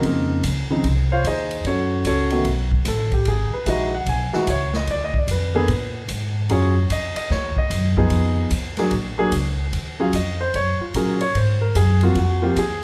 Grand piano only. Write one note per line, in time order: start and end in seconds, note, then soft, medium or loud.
0.00 0.41 C#3 medium
0.00 0.41 F3 medium
0.00 0.41 C4 medium
0.00 0.41 D#4 medium
0.06 0.42 A#3 medium
0.06 0.42 A#4 medium
0.70 0.83 C#3 medium
0.70 0.83 F3 medium
0.70 0.83 C4 medium
0.70 0.83 D#4 medium
1.12 1.25 F4 medium
1.12 1.25 C5 medium
1.12 1.25 C#5 medium
1.12 1.25 F5 medium
1.27 1.63 D#4 medium
1.27 1.63 G#4 medium
1.27 1.63 C5 medium
1.27 1.63 D#5 medium
1.67 2.03 C#4 medium
1.67 2.04 F#4 medium
1.67 2.03 A4 soft
1.67 2.03 C#5 medium
2.07 2.44 C#4 medium
2.07 2.31 F#4 medium
2.07 2.44 A4 medium
2.07 2.43 C#5 medium
2.31 2.44 D#3 medium
2.31 2.44 A3 medium
2.31 2.44 B3 medium
2.31 2.45 F#4 medium
2.88 3.12 A4 medium
3.13 3.26 G4 medium
3.28 3.53 G#4 medium
3.54 3.67 B4 medium
3.66 3.90 E3 medium
3.66 3.91 G#3 medium
3.66 3.90 D#4 medium
3.66 3.91 F#4 medium
3.66 3.93 D#5 medium
3.95 4.07 F#5 medium
4.09 4.33 G#5 medium
4.33 4.46 E3 medium
4.33 4.46 G#3 medium
4.33 4.46 D#4 medium
4.33 4.46 F#4 medium
4.33 4.48 E5 medium
4.50 4.74 C#5 medium
4.76 4.89 D#5 medium
4.91 5.02 D5 medium
5.04 5.16 D#5 medium
5.18 5.30 D5 medium
5.31 5.55 B4 medium
5.54 5.67 D3 medium
5.54 5.67 A#3 medium
5.54 5.67 B3 medium
5.54 5.68 G#4 medium
5.54 6.06 B4 medium
6.50 6.73 F#3 medium
6.50 6.74 C#4 medium
6.50 6.74 F4 medium
6.50 6.74 G#4 medium
6.50 6.88 C#5 medium
6.92 7.15 D#5 medium
7.16 7.30 D#5 medium
7.32 7.56 C#5 medium
7.58 7.95 D#5 medium
7.97 8.49 F3 medium
7.97 8.49 B3 medium
7.97 8.49 D#4 medium
7.97 8.49 G#4 medium
8.79 8.91 F#3 medium
8.79 8.91 A#3 medium
8.79 8.91 D4 medium
8.79 8.91 G#4 medium
9.18 9.31 F#3 medium
9.18 9.31 A#3 medium
9.18 9.31 D4 medium
9.18 9.31 G#4 medium
10.00 10.12 F#3 medium
10.00 10.12 C#4 medium
10.00 10.12 F4 medium
10.00 10.13 G#4 medium
10.00 10.14 F5 medium
10.15 10.40 D#5 medium
10.41 10.54 C5 medium
10.56 10.80 C#5 medium
10.81 10.94 F4 soft
10.95 11.19 F#3 medium
10.95 11.19 C#4 medium
10.95 11.19 F4 soft
10.95 11.19 G#4 medium
10.95 11.21 A#4 medium
11.21 11.35 C#5 medium
11.36 11.61 C5 medium
11.61 11.75 A#4 medium
11.76 12.01 G#4 medium
12.03 12.15 F3 medium
12.03 12.15 A#3 medium
12.03 12.15 C4 medium
12.03 12.16 F4 medium
12.03 12.16 F#4 medium
12.18 12.43 F#4 medium
12.42 12.55 F3 medium
12.42 12.55 A#3 medium
12.42 12.55 C4 medium
12.42 12.55 F4 medium
12.42 12.57 G4 medium
12.59 12.83 G#4 medium